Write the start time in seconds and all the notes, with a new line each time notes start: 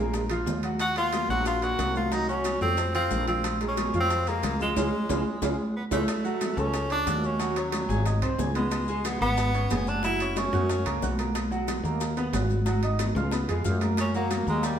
Already playing: A#1 G#3 A#3 G#4
0.00 A#4
0.14 G#3 G#4 A#4, high bongo, high conga, high timbale, maracas
0.30 F3 F4 F5, high bongo, high timbale, maracas
0.46 D#2, high bongo, low bongo, high conga, low timbale, maracas
0.63 F#3 F#4 F#5, high timbale, maracas
0.79 F#4, high bongo, high conga, high timbale, maracas
0.96 A#3 F4 A#4 C#5, high bongo, high conga, high timbale, maracas
1.13 high bongo, high conga, high timbale, maracas
1.29 A#1 F#3 F#4 F#5, high bongo, high conga, maracas
1.45 F4, high bongo, high conga, high timbale, maracas
1.62 A#3 F#4 A#4 C#5, high bongo, high conga, high timbale, maracas
1.79 C2, high bongo, low bongo, high conga, high timbale, maracas
1.95 F#3 F4 F#4 F#5, high conga, maracas
2.12 F#3 D#4 F#4 F#5, high bongo, high conga, high timbale, maracas
2.28 F#3 C#4 F#4 F#5, high bongo, maracas
2.44 high bongo, high conga, high timbale, maracas
2.61 F2 A3 C4 A4 C5, high bongo, high conga, maracas
2.77 A3 A4 C5, high bongo, high timbale, maracas
2.94 F3 C4 F4 F5, high bongo, high timbale, maracas
3.11 A#1, high bongo, low bongo, high conga, maracas
3.28 F3 C4 F4 F5, high conga, high timbale, maracas
3.44 high bongo, high conga, high timbale, maracas
3.61 G#3 G#4 A#4, high bongo, high conga, high timbale, maracas
3.68 C#4
3.77 high bongo, high conga, high timbale, maracas
3.94 F2 F3 F4 F5, high bongo, high conga, maracas
4.00 C4
4.10 high bongo, high conga, high timbale, maracas
4.27 G#3 A#3 G#4 A#4, high bongo, high conga, high timbale, maracas
4.43 C#2, high bongo, low bongo, high conga, high timbale, maracas
4.60 F3 G#3 F4 F5, high conga, maracas
4.76 C#2 C#4 F4 G#4, low bongo, high conga, high timbale, maracas
5.09 C#2 C#4 F4 G#4, low bongo, high conga, high timbale, maracas
5.42 C#2 C#4 F4 G#4, low bongo, high conga, high timbale, maracas
5.76 B3
5.91 C#2 A3 C#4 F4 G#4, low bongo, high conga, high timbale, maracas
6.08 high bongo, high timbale, maracas
6.24 F#3 F#4 F#5, high bongo, high conga, maracas
6.41 high bongo, high conga, high timbale, maracas
6.57 C#2 A3 C#4 A4 A5, high bongo, high conga, maracas
6.74 high bongo, high conga, high timbale, maracas
6.90 C#4 D4 C#5 C#6, high conga, high timbale, maracas
7.07 D#2 F#4 F#5 F#6, high bongo, low bongo, high conga, high timbale, maracas
7.23 C#4, high bongo, maracas
7.39 F#3 F#4 F#5, high bongo, high conga, high timbale, maracas
7.56 F#3 C#4 C#5 C#6, high bongo, high conga, high timbale, maracas
7.72 high bongo, high conga, high timbale, maracas
7.89 G#1 G#4 G#5 G#6, high bongo, high conga, maracas
8.06 D#4 D#5 D#6, high bongo, high conga, high timbale, maracas
8.22 C2 C4 C5 C6, high timbale, maracas
8.38 C#2 G#4 G#5 G#6, high bongo, low bongo, high conga, low timbale, maracas
8.55 G#3 B3 B4 B5, high bongo, high conga, high timbale, maracas
8.71 high bongo, high conga, high timbale, maracas
8.88 G#3 G#4 G#5, high bongo, high conga, maracas
9.05 B3, high bongo, high conga, high timbale, maracas
9.21 G#1 B3 B4 B5, high conga, maracas
9.37 high bongo, high conga, high timbale, maracas
9.54 C#4 C#5 C#6, high timbale, maracas
9.70 F#1 G#4 G#5 G#6, high bongo, low bongo, high conga, high timbale, low timbale, maracas
9.87 D4, high bongo, maracas
10.03 F#3 E4 F#4 F#5, high bongo, high timbale, maracas
10.20 C#4 C#5 C#6, high bongo, high conga, high timbale, maracas
10.36 C#4, high bongo, high conga, high timbale, maracas
10.53 F#2 F#4 F#5 F#6, high bongo, high conga, maracas
10.69 C#4 C#5 C#6, high bongo, high timbale, maracas
10.86 C#2 A#3 A#4 A#5, high timbale, maracas
11.02 B1 F#4 F#5 F#6, high bongo, low bongo, high conga, maracas
11.18 A#3 A#4 A#5, high bongo, high conga, high timbale, maracas
11.35 high bongo, high conga, high timbale, maracas
11.51 F#3 F#4 F#5, high bongo, high conga, maracas
11.68 high bongo, high conga, high timbale, maracas
11.83 D#2 A#3 A#4 A#5, high bongo, high conga, maracas
12.01 high bongo, high conga, high timbale, maracas
12.17 B3 B4 B5, high conga, high timbale, maracas
12.33 G#1 F#4 F#5 F#6, high bongo, low bongo, high conga, high timbale, low timbale, maracas
12.50 high bongo, high conga, maracas
12.66 F#3 F#4 F#5, high bongo, high conga, high timbale, maracas
12.82 D#4 D#5 D#6, high bongo, high timbale, maracas
12.99 high bongo, high conga, high timbale, maracas
13.15 C#2 F4 F5 F6, high bongo, high conga, maracas
13.32 B3 B4 B5, high bongo, high conga, high timbale, maracas
13.48 F2 G#3 G#4 G#5, high conga, high timbale, maracas
13.64 F#2 F4 F5 F6, high bongo, low bongo, high conga, maracas
13.81 A#3 A#4 A#5, high bongo, high conga, high timbale, maracas
13.97 C#4, high bongo, high conga, high timbale, maracas
14.14 F#3 A#3 F#4 F#5, high bongo, high conga, maracas
14.31 high bongo, high conga, high timbale, maracas
14.47 D#2 G#3 A#3 A#4 A#5, high bongo, high conga, maracas
14.63 G3, high bongo, high conga, high timbale, maracas